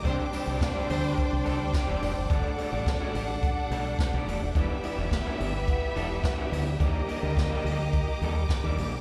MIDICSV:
0, 0, Header, 1, 8, 480
1, 0, Start_track
1, 0, Key_signature, 1, "major"
1, 0, Tempo, 563380
1, 40, Time_signature, 4, 2, 24, 8
1, 7676, End_track
2, 0, Start_track
2, 0, Title_t, "String section"
2, 0, Program_c, 0, 48
2, 0, Note_on_c, 0, 67, 90
2, 0, Note_on_c, 0, 86, 94
2, 54, Note_on_c, 0, 84, 85
2, 55, Note_on_c, 0, 74, 88
2, 1922, Note_off_c, 0, 67, 0
2, 1946, Note_off_c, 0, 84, 0
2, 1956, Note_on_c, 0, 81, 72
2, 1961, Note_on_c, 0, 67, 86
2, 3850, Note_off_c, 0, 74, 0
2, 3857, Note_off_c, 0, 81, 0
2, 3872, Note_on_c, 0, 83, 82
2, 3873, Note_on_c, 0, 76, 80
2, 5762, Note_off_c, 0, 86, 0
2, 5776, Note_off_c, 0, 76, 0
2, 5776, Note_off_c, 0, 83, 0
2, 5796, Note_on_c, 0, 82, 79
2, 5797, Note_on_c, 0, 75, 82
2, 5798, Note_on_c, 0, 86, 105
2, 7676, Note_off_c, 0, 67, 0
2, 7676, Note_off_c, 0, 75, 0
2, 7676, Note_off_c, 0, 82, 0
2, 7676, Note_off_c, 0, 86, 0
2, 7676, End_track
3, 0, Start_track
3, 0, Title_t, "Violin section"
3, 0, Program_c, 1, 48
3, 51, Note_on_c, 1, 62, 95
3, 51, Note_on_c, 1, 79, 90
3, 53, Note_on_c, 1, 72, 85
3, 1929, Note_off_c, 1, 79, 0
3, 1930, Note_off_c, 1, 62, 0
3, 1930, Note_off_c, 1, 72, 0
3, 1955, Note_on_c, 1, 62, 87
3, 1957, Note_on_c, 1, 69, 76
3, 1959, Note_on_c, 1, 78, 92
3, 3842, Note_off_c, 1, 62, 0
3, 3842, Note_off_c, 1, 69, 0
3, 3843, Note_off_c, 1, 78, 0
3, 3883, Note_on_c, 1, 67, 78
3, 3885, Note_on_c, 1, 59, 88
3, 3887, Note_on_c, 1, 76, 94
3, 5766, Note_off_c, 1, 67, 0
3, 5767, Note_off_c, 1, 59, 0
3, 5768, Note_off_c, 1, 76, 0
3, 5811, Note_on_c, 1, 67, 86
3, 5812, Note_on_c, 1, 58, 93
3, 5813, Note_on_c, 1, 75, 98
3, 7676, Note_off_c, 1, 58, 0
3, 7676, Note_off_c, 1, 67, 0
3, 7676, Note_off_c, 1, 75, 0
3, 7676, End_track
4, 0, Start_track
4, 0, Title_t, "Horn section"
4, 0, Program_c, 2, 61
4, 46, Note_on_c, 2, 55, 91
4, 47, Note_on_c, 2, 62, 88
4, 47, Note_on_c, 2, 72, 98
4, 120, Note_off_c, 2, 55, 0
4, 121, Note_off_c, 2, 72, 0
4, 122, Note_off_c, 2, 62, 0
4, 766, Note_on_c, 2, 62, 101
4, 767, Note_on_c, 2, 55, 103
4, 767, Note_on_c, 2, 72, 113
4, 1069, Note_off_c, 2, 55, 0
4, 1069, Note_off_c, 2, 62, 0
4, 1069, Note_off_c, 2, 72, 0
4, 7676, End_track
5, 0, Start_track
5, 0, Title_t, "Clean electric guitar"
5, 0, Program_c, 3, 27
5, 34, Note_on_c, 3, 55, 83
5, 37, Note_on_c, 3, 60, 93
5, 42, Note_on_c, 3, 62, 102
5, 43, Note_on_c, 3, 67, 103
5, 209, Note_off_c, 3, 55, 0
5, 211, Note_off_c, 3, 60, 0
5, 213, Note_off_c, 3, 62, 0
5, 214, Note_off_c, 3, 67, 0
5, 280, Note_on_c, 3, 55, 58
5, 284, Note_on_c, 3, 60, 59
5, 286, Note_on_c, 3, 62, 74
5, 290, Note_on_c, 3, 67, 71
5, 394, Note_off_c, 3, 67, 0
5, 399, Note_off_c, 3, 60, 0
5, 399, Note_off_c, 3, 62, 0
5, 400, Note_off_c, 3, 55, 0
5, 404, Note_on_c, 3, 67, 62
5, 409, Note_on_c, 3, 60, 62
5, 409, Note_on_c, 3, 62, 65
5, 410, Note_on_c, 3, 55, 61
5, 511, Note_off_c, 3, 55, 0
5, 516, Note_off_c, 3, 60, 0
5, 518, Note_off_c, 3, 62, 0
5, 520, Note_off_c, 3, 67, 0
5, 642, Note_on_c, 3, 67, 86
5, 646, Note_on_c, 3, 62, 84
5, 653, Note_on_c, 3, 55, 75
5, 653, Note_on_c, 3, 60, 76
5, 750, Note_off_c, 3, 55, 0
5, 755, Note_off_c, 3, 60, 0
5, 758, Note_off_c, 3, 62, 0
5, 758, Note_off_c, 3, 67, 0
5, 761, Note_on_c, 3, 55, 66
5, 765, Note_on_c, 3, 60, 68
5, 768, Note_on_c, 3, 62, 62
5, 769, Note_on_c, 3, 67, 73
5, 875, Note_off_c, 3, 67, 0
5, 877, Note_off_c, 3, 62, 0
5, 880, Note_off_c, 3, 60, 0
5, 895, Note_off_c, 3, 55, 0
5, 1230, Note_on_c, 3, 55, 90
5, 1236, Note_on_c, 3, 60, 97
5, 1236, Note_on_c, 3, 62, 93
5, 1239, Note_on_c, 3, 69, 88
5, 1344, Note_off_c, 3, 62, 0
5, 1345, Note_off_c, 3, 60, 0
5, 1346, Note_off_c, 3, 69, 0
5, 1407, Note_off_c, 3, 55, 0
5, 1591, Note_on_c, 3, 67, 88
5, 1595, Note_on_c, 3, 62, 81
5, 1599, Note_on_c, 3, 60, 86
5, 1602, Note_on_c, 3, 55, 71
5, 1705, Note_off_c, 3, 55, 0
5, 1711, Note_off_c, 3, 60, 0
5, 1711, Note_off_c, 3, 62, 0
5, 1713, Note_off_c, 3, 67, 0
5, 1715, Note_on_c, 3, 55, 60
5, 1721, Note_on_c, 3, 60, 65
5, 1721, Note_on_c, 3, 62, 76
5, 1723, Note_on_c, 3, 67, 67
5, 1820, Note_off_c, 3, 67, 0
5, 1823, Note_off_c, 3, 60, 0
5, 1823, Note_off_c, 3, 62, 0
5, 1852, Note_off_c, 3, 55, 0
5, 1956, Note_on_c, 3, 55, 103
5, 1959, Note_on_c, 3, 57, 95
5, 1959, Note_on_c, 3, 62, 106
5, 1963, Note_on_c, 3, 67, 105
5, 2129, Note_off_c, 3, 55, 0
5, 2131, Note_off_c, 3, 57, 0
5, 2131, Note_off_c, 3, 62, 0
5, 2133, Note_off_c, 3, 67, 0
5, 2199, Note_on_c, 3, 55, 63
5, 2201, Note_on_c, 3, 57, 64
5, 2206, Note_on_c, 3, 62, 64
5, 2209, Note_on_c, 3, 67, 65
5, 2310, Note_off_c, 3, 67, 0
5, 2314, Note_off_c, 3, 62, 0
5, 2316, Note_off_c, 3, 57, 0
5, 2319, Note_off_c, 3, 55, 0
5, 2320, Note_on_c, 3, 67, 63
5, 2324, Note_on_c, 3, 62, 56
5, 2326, Note_on_c, 3, 57, 55
5, 2330, Note_on_c, 3, 55, 53
5, 2428, Note_off_c, 3, 55, 0
5, 2432, Note_off_c, 3, 57, 0
5, 2434, Note_off_c, 3, 62, 0
5, 2437, Note_off_c, 3, 67, 0
5, 2559, Note_on_c, 3, 67, 90
5, 2560, Note_on_c, 3, 62, 73
5, 2566, Note_on_c, 3, 57, 65
5, 2571, Note_on_c, 3, 55, 68
5, 2673, Note_off_c, 3, 55, 0
5, 2679, Note_off_c, 3, 57, 0
5, 2683, Note_off_c, 3, 62, 0
5, 2683, Note_off_c, 3, 67, 0
5, 2683, Note_on_c, 3, 55, 63
5, 2689, Note_on_c, 3, 57, 72
5, 2693, Note_on_c, 3, 67, 79
5, 2694, Note_on_c, 3, 62, 80
5, 2791, Note_off_c, 3, 67, 0
5, 2793, Note_off_c, 3, 62, 0
5, 2799, Note_off_c, 3, 57, 0
5, 2815, Note_off_c, 3, 55, 0
5, 3164, Note_on_c, 3, 55, 85
5, 3166, Note_on_c, 3, 57, 96
5, 3170, Note_on_c, 3, 62, 94
5, 3172, Note_on_c, 3, 69, 94
5, 3282, Note_off_c, 3, 62, 0
5, 3285, Note_off_c, 3, 57, 0
5, 3287, Note_off_c, 3, 69, 0
5, 3333, Note_off_c, 3, 55, 0
5, 3527, Note_on_c, 3, 67, 71
5, 3529, Note_on_c, 3, 62, 76
5, 3533, Note_on_c, 3, 57, 69
5, 3535, Note_on_c, 3, 55, 72
5, 3637, Note_off_c, 3, 55, 0
5, 3640, Note_off_c, 3, 57, 0
5, 3642, Note_off_c, 3, 62, 0
5, 3647, Note_on_c, 3, 55, 62
5, 3649, Note_off_c, 3, 67, 0
5, 3650, Note_on_c, 3, 57, 70
5, 3653, Note_on_c, 3, 62, 71
5, 3659, Note_on_c, 3, 67, 66
5, 3757, Note_off_c, 3, 67, 0
5, 3762, Note_off_c, 3, 62, 0
5, 3764, Note_off_c, 3, 57, 0
5, 3777, Note_off_c, 3, 55, 0
5, 3885, Note_on_c, 3, 52, 98
5, 3890, Note_on_c, 3, 59, 84
5, 3890, Note_on_c, 3, 62, 101
5, 3895, Note_on_c, 3, 67, 99
5, 4054, Note_off_c, 3, 52, 0
5, 4056, Note_off_c, 3, 59, 0
5, 4056, Note_off_c, 3, 62, 0
5, 4058, Note_off_c, 3, 67, 0
5, 4120, Note_on_c, 3, 52, 61
5, 4123, Note_on_c, 3, 59, 59
5, 4130, Note_on_c, 3, 62, 65
5, 4134, Note_on_c, 3, 67, 69
5, 4232, Note_off_c, 3, 67, 0
5, 4236, Note_off_c, 3, 59, 0
5, 4238, Note_off_c, 3, 62, 0
5, 4241, Note_off_c, 3, 52, 0
5, 4243, Note_on_c, 3, 67, 71
5, 4246, Note_on_c, 3, 59, 56
5, 4248, Note_on_c, 3, 62, 64
5, 4251, Note_on_c, 3, 52, 57
5, 4352, Note_off_c, 3, 52, 0
5, 4355, Note_off_c, 3, 59, 0
5, 4357, Note_off_c, 3, 62, 0
5, 4357, Note_off_c, 3, 67, 0
5, 4479, Note_on_c, 3, 67, 76
5, 4483, Note_on_c, 3, 62, 82
5, 4486, Note_on_c, 3, 59, 73
5, 4491, Note_on_c, 3, 52, 67
5, 4589, Note_off_c, 3, 52, 0
5, 4593, Note_off_c, 3, 59, 0
5, 4593, Note_off_c, 3, 62, 0
5, 4598, Note_off_c, 3, 67, 0
5, 4599, Note_on_c, 3, 52, 67
5, 4603, Note_on_c, 3, 59, 69
5, 4603, Note_on_c, 3, 62, 86
5, 4608, Note_on_c, 3, 67, 78
5, 4707, Note_off_c, 3, 67, 0
5, 4715, Note_off_c, 3, 62, 0
5, 4717, Note_off_c, 3, 59, 0
5, 4733, Note_off_c, 3, 52, 0
5, 5073, Note_on_c, 3, 52, 92
5, 5079, Note_on_c, 3, 59, 82
5, 5080, Note_on_c, 3, 62, 112
5, 5084, Note_on_c, 3, 69, 105
5, 5182, Note_off_c, 3, 62, 0
5, 5187, Note_off_c, 3, 59, 0
5, 5189, Note_off_c, 3, 69, 0
5, 5247, Note_off_c, 3, 52, 0
5, 5433, Note_on_c, 3, 62, 67
5, 5433, Note_on_c, 3, 67, 88
5, 5437, Note_on_c, 3, 59, 68
5, 5441, Note_on_c, 3, 52, 59
5, 5543, Note_off_c, 3, 52, 0
5, 5548, Note_off_c, 3, 59, 0
5, 5553, Note_off_c, 3, 62, 0
5, 5554, Note_off_c, 3, 67, 0
5, 5554, Note_on_c, 3, 52, 66
5, 5559, Note_on_c, 3, 59, 65
5, 5563, Note_on_c, 3, 62, 77
5, 5564, Note_on_c, 3, 67, 74
5, 5663, Note_off_c, 3, 67, 0
5, 5669, Note_off_c, 3, 62, 0
5, 5670, Note_off_c, 3, 59, 0
5, 5691, Note_off_c, 3, 52, 0
5, 5791, Note_on_c, 3, 55, 84
5, 5793, Note_on_c, 3, 58, 93
5, 5796, Note_on_c, 3, 62, 101
5, 5796, Note_on_c, 3, 67, 97
5, 5966, Note_off_c, 3, 55, 0
5, 5968, Note_off_c, 3, 58, 0
5, 5969, Note_off_c, 3, 62, 0
5, 5969, Note_off_c, 3, 67, 0
5, 6026, Note_on_c, 3, 55, 72
5, 6031, Note_on_c, 3, 58, 73
5, 6032, Note_on_c, 3, 62, 68
5, 6036, Note_on_c, 3, 67, 82
5, 6142, Note_off_c, 3, 67, 0
5, 6145, Note_off_c, 3, 62, 0
5, 6151, Note_off_c, 3, 55, 0
5, 6151, Note_off_c, 3, 58, 0
5, 6152, Note_on_c, 3, 67, 60
5, 6155, Note_on_c, 3, 62, 57
5, 6161, Note_on_c, 3, 55, 54
5, 6161, Note_on_c, 3, 58, 55
5, 6269, Note_off_c, 3, 55, 0
5, 6271, Note_off_c, 3, 58, 0
5, 6275, Note_off_c, 3, 62, 0
5, 6275, Note_off_c, 3, 67, 0
5, 6391, Note_on_c, 3, 67, 85
5, 6395, Note_on_c, 3, 62, 78
5, 6398, Note_on_c, 3, 58, 74
5, 6403, Note_on_c, 3, 55, 68
5, 6499, Note_off_c, 3, 55, 0
5, 6506, Note_off_c, 3, 58, 0
5, 6507, Note_off_c, 3, 62, 0
5, 6509, Note_on_c, 3, 55, 68
5, 6510, Note_off_c, 3, 67, 0
5, 6516, Note_on_c, 3, 58, 68
5, 6518, Note_on_c, 3, 62, 67
5, 6520, Note_on_c, 3, 67, 78
5, 6633, Note_off_c, 3, 67, 0
5, 6635, Note_off_c, 3, 62, 0
5, 6638, Note_off_c, 3, 58, 0
5, 6648, Note_off_c, 3, 55, 0
5, 7008, Note_on_c, 3, 55, 87
5, 7012, Note_on_c, 3, 58, 77
5, 7018, Note_on_c, 3, 62, 77
5, 7020, Note_on_c, 3, 69, 96
5, 7125, Note_off_c, 3, 62, 0
5, 7130, Note_off_c, 3, 69, 0
5, 7131, Note_off_c, 3, 58, 0
5, 7176, Note_off_c, 3, 55, 0
5, 7365, Note_on_c, 3, 67, 77
5, 7372, Note_on_c, 3, 62, 79
5, 7375, Note_on_c, 3, 58, 65
5, 7379, Note_on_c, 3, 55, 60
5, 7476, Note_off_c, 3, 55, 0
5, 7481, Note_off_c, 3, 58, 0
5, 7484, Note_off_c, 3, 62, 0
5, 7485, Note_off_c, 3, 67, 0
5, 7486, Note_on_c, 3, 55, 67
5, 7491, Note_on_c, 3, 58, 72
5, 7494, Note_on_c, 3, 62, 69
5, 7495, Note_on_c, 3, 67, 70
5, 7595, Note_off_c, 3, 67, 0
5, 7600, Note_off_c, 3, 62, 0
5, 7605, Note_off_c, 3, 58, 0
5, 7618, Note_off_c, 3, 55, 0
5, 7676, End_track
6, 0, Start_track
6, 0, Title_t, "Fingered electric bass"
6, 0, Program_c, 4, 33
6, 43, Note_on_c, 4, 36, 106
6, 139, Note_off_c, 4, 36, 0
6, 401, Note_on_c, 4, 36, 94
6, 596, Note_off_c, 4, 36, 0
6, 765, Note_on_c, 4, 38, 94
6, 958, Note_off_c, 4, 38, 0
6, 1130, Note_on_c, 4, 36, 92
6, 1223, Note_off_c, 4, 36, 0
6, 1250, Note_on_c, 4, 36, 97
6, 1343, Note_off_c, 4, 36, 0
6, 1369, Note_on_c, 4, 38, 89
6, 1463, Note_off_c, 4, 38, 0
6, 1605, Note_on_c, 4, 28, 78
6, 1700, Note_off_c, 4, 28, 0
6, 1725, Note_on_c, 4, 29, 87
6, 1820, Note_off_c, 4, 29, 0
6, 1852, Note_on_c, 4, 30, 100
6, 1944, Note_off_c, 4, 30, 0
6, 1960, Note_on_c, 4, 31, 103
6, 2057, Note_off_c, 4, 31, 0
6, 2322, Note_on_c, 4, 33, 88
6, 2515, Note_off_c, 4, 33, 0
6, 2680, Note_on_c, 4, 33, 95
6, 2972, Note_off_c, 4, 33, 0
6, 3155, Note_on_c, 4, 35, 94
6, 3352, Note_off_c, 4, 35, 0
6, 3524, Note_on_c, 4, 35, 106
6, 3619, Note_off_c, 4, 35, 0
6, 3635, Note_on_c, 4, 28, 94
6, 3734, Note_off_c, 4, 28, 0
6, 3765, Note_on_c, 4, 27, 98
6, 3860, Note_off_c, 4, 27, 0
6, 3879, Note_on_c, 4, 28, 118
6, 3976, Note_off_c, 4, 28, 0
6, 4244, Note_on_c, 4, 28, 97
6, 4437, Note_off_c, 4, 28, 0
6, 4600, Note_on_c, 4, 31, 97
6, 4892, Note_off_c, 4, 31, 0
6, 5076, Note_on_c, 4, 28, 90
6, 5272, Note_off_c, 4, 28, 0
6, 5555, Note_on_c, 4, 38, 91
6, 5752, Note_off_c, 4, 38, 0
6, 5795, Note_on_c, 4, 39, 117
6, 5894, Note_off_c, 4, 39, 0
6, 6158, Note_on_c, 4, 38, 102
6, 6354, Note_off_c, 4, 38, 0
6, 6513, Note_on_c, 4, 38, 90
6, 6808, Note_off_c, 4, 38, 0
6, 6998, Note_on_c, 4, 39, 89
6, 7194, Note_off_c, 4, 39, 0
6, 7357, Note_on_c, 4, 39, 92
6, 7455, Note_off_c, 4, 39, 0
6, 7482, Note_on_c, 4, 34, 97
6, 7599, Note_off_c, 4, 34, 0
6, 7599, Note_on_c, 4, 35, 92
6, 7676, Note_off_c, 4, 35, 0
6, 7676, End_track
7, 0, Start_track
7, 0, Title_t, "Muted clean electric guitar strokes"
7, 521, Note_on_c, 9, 29, 44
7, 606, Note_off_c, 9, 29, 0
7, 885, Note_on_c, 9, 29, 47
7, 970, Note_off_c, 9, 29, 0
7, 1116, Note_on_c, 9, 29, 46
7, 1201, Note_off_c, 9, 29, 0
7, 1349, Note_on_c, 9, 29, 59
7, 1434, Note_off_c, 9, 29, 0
7, 1474, Note_on_c, 9, 29, 39
7, 1560, Note_off_c, 9, 29, 0
7, 1831, Note_on_c, 9, 29, 53
7, 1916, Note_off_c, 9, 29, 0
7, 2439, Note_on_c, 9, 29, 43
7, 2524, Note_off_c, 9, 29, 0
7, 2802, Note_on_c, 9, 29, 49
7, 2887, Note_off_c, 9, 29, 0
7, 3044, Note_on_c, 9, 29, 49
7, 3130, Note_off_c, 9, 29, 0
7, 3291, Note_on_c, 9, 29, 53
7, 3376, Note_off_c, 9, 29, 0
7, 3409, Note_on_c, 9, 29, 46
7, 3494, Note_off_c, 9, 29, 0
7, 3767, Note_on_c, 9, 29, 53
7, 3852, Note_off_c, 9, 29, 0
7, 4362, Note_on_c, 9, 29, 49
7, 4448, Note_off_c, 9, 29, 0
7, 4718, Note_on_c, 9, 29, 45
7, 4803, Note_off_c, 9, 29, 0
7, 4957, Note_on_c, 9, 29, 48
7, 5042, Note_off_c, 9, 29, 0
7, 5192, Note_on_c, 9, 29, 46
7, 5277, Note_off_c, 9, 29, 0
7, 5314, Note_on_c, 9, 29, 46
7, 5399, Note_off_c, 9, 29, 0
7, 5674, Note_on_c, 9, 29, 44
7, 5759, Note_off_c, 9, 29, 0
7, 6279, Note_on_c, 9, 29, 39
7, 6364, Note_off_c, 9, 29, 0
7, 6643, Note_on_c, 9, 29, 42
7, 6728, Note_off_c, 9, 29, 0
7, 6884, Note_on_c, 9, 29, 47
7, 6969, Note_off_c, 9, 29, 0
7, 7134, Note_on_c, 9, 29, 53
7, 7219, Note_off_c, 9, 29, 0
7, 7250, Note_on_c, 9, 29, 44
7, 7336, Note_off_c, 9, 29, 0
7, 7605, Note_on_c, 9, 29, 47
7, 7676, Note_off_c, 9, 29, 0
7, 7676, End_track
8, 0, Start_track
8, 0, Title_t, "Drums"
8, 42, Note_on_c, 9, 36, 118
8, 43, Note_on_c, 9, 42, 79
8, 127, Note_off_c, 9, 36, 0
8, 129, Note_off_c, 9, 42, 0
8, 278, Note_on_c, 9, 46, 84
8, 363, Note_off_c, 9, 46, 0
8, 521, Note_on_c, 9, 36, 123
8, 522, Note_on_c, 9, 42, 66
8, 530, Note_on_c, 9, 38, 113
8, 606, Note_off_c, 9, 36, 0
8, 607, Note_off_c, 9, 42, 0
8, 615, Note_off_c, 9, 38, 0
8, 764, Note_on_c, 9, 46, 78
8, 849, Note_off_c, 9, 46, 0
8, 999, Note_on_c, 9, 42, 64
8, 1003, Note_on_c, 9, 36, 111
8, 1084, Note_off_c, 9, 42, 0
8, 1089, Note_off_c, 9, 36, 0
8, 1239, Note_on_c, 9, 46, 65
8, 1324, Note_off_c, 9, 46, 0
8, 1477, Note_on_c, 9, 42, 69
8, 1478, Note_on_c, 9, 36, 123
8, 1483, Note_on_c, 9, 38, 120
8, 1562, Note_off_c, 9, 42, 0
8, 1564, Note_off_c, 9, 36, 0
8, 1568, Note_off_c, 9, 38, 0
8, 1722, Note_on_c, 9, 46, 79
8, 1807, Note_off_c, 9, 46, 0
8, 1960, Note_on_c, 9, 36, 125
8, 1960, Note_on_c, 9, 42, 85
8, 2045, Note_off_c, 9, 36, 0
8, 2045, Note_off_c, 9, 42, 0
8, 2200, Note_on_c, 9, 46, 80
8, 2285, Note_off_c, 9, 46, 0
8, 2440, Note_on_c, 9, 36, 112
8, 2442, Note_on_c, 9, 42, 72
8, 2450, Note_on_c, 9, 38, 121
8, 2525, Note_off_c, 9, 36, 0
8, 2527, Note_off_c, 9, 42, 0
8, 2536, Note_off_c, 9, 38, 0
8, 2682, Note_on_c, 9, 46, 78
8, 2767, Note_off_c, 9, 46, 0
8, 2918, Note_on_c, 9, 42, 62
8, 2921, Note_on_c, 9, 36, 119
8, 3003, Note_off_c, 9, 42, 0
8, 3007, Note_off_c, 9, 36, 0
8, 3162, Note_on_c, 9, 46, 65
8, 3248, Note_off_c, 9, 46, 0
8, 3398, Note_on_c, 9, 36, 127
8, 3403, Note_on_c, 9, 42, 82
8, 3409, Note_on_c, 9, 38, 127
8, 3483, Note_off_c, 9, 36, 0
8, 3488, Note_off_c, 9, 42, 0
8, 3494, Note_off_c, 9, 38, 0
8, 3648, Note_on_c, 9, 46, 80
8, 3733, Note_off_c, 9, 46, 0
8, 3878, Note_on_c, 9, 36, 127
8, 3880, Note_on_c, 9, 42, 84
8, 3963, Note_off_c, 9, 36, 0
8, 3965, Note_off_c, 9, 42, 0
8, 4117, Note_on_c, 9, 46, 72
8, 4202, Note_off_c, 9, 46, 0
8, 4356, Note_on_c, 9, 36, 108
8, 4361, Note_on_c, 9, 42, 70
8, 4369, Note_on_c, 9, 38, 118
8, 4441, Note_off_c, 9, 36, 0
8, 4446, Note_off_c, 9, 42, 0
8, 4454, Note_off_c, 9, 38, 0
8, 4603, Note_on_c, 9, 46, 77
8, 4688, Note_off_c, 9, 46, 0
8, 4837, Note_on_c, 9, 42, 66
8, 4838, Note_on_c, 9, 36, 122
8, 4922, Note_off_c, 9, 42, 0
8, 4924, Note_off_c, 9, 36, 0
8, 5081, Note_on_c, 9, 46, 59
8, 5166, Note_off_c, 9, 46, 0
8, 5314, Note_on_c, 9, 36, 127
8, 5316, Note_on_c, 9, 42, 78
8, 5322, Note_on_c, 9, 38, 121
8, 5400, Note_off_c, 9, 36, 0
8, 5401, Note_off_c, 9, 42, 0
8, 5407, Note_off_c, 9, 38, 0
8, 5562, Note_on_c, 9, 46, 85
8, 5647, Note_off_c, 9, 46, 0
8, 5795, Note_on_c, 9, 36, 127
8, 5796, Note_on_c, 9, 42, 84
8, 5881, Note_off_c, 9, 36, 0
8, 5881, Note_off_c, 9, 42, 0
8, 6035, Note_on_c, 9, 46, 77
8, 6120, Note_off_c, 9, 46, 0
8, 6278, Note_on_c, 9, 36, 117
8, 6283, Note_on_c, 9, 42, 72
8, 6291, Note_on_c, 9, 38, 105
8, 6363, Note_off_c, 9, 36, 0
8, 6368, Note_off_c, 9, 42, 0
8, 6376, Note_off_c, 9, 38, 0
8, 6526, Note_on_c, 9, 46, 79
8, 6611, Note_off_c, 9, 46, 0
8, 6757, Note_on_c, 9, 42, 61
8, 6760, Note_on_c, 9, 36, 116
8, 6842, Note_off_c, 9, 42, 0
8, 6845, Note_off_c, 9, 36, 0
8, 6999, Note_on_c, 9, 46, 58
8, 7084, Note_off_c, 9, 46, 0
8, 7235, Note_on_c, 9, 36, 122
8, 7236, Note_on_c, 9, 42, 74
8, 7242, Note_on_c, 9, 38, 127
8, 7320, Note_off_c, 9, 36, 0
8, 7321, Note_off_c, 9, 42, 0
8, 7327, Note_off_c, 9, 38, 0
8, 7480, Note_on_c, 9, 46, 78
8, 7565, Note_off_c, 9, 46, 0
8, 7676, End_track
0, 0, End_of_file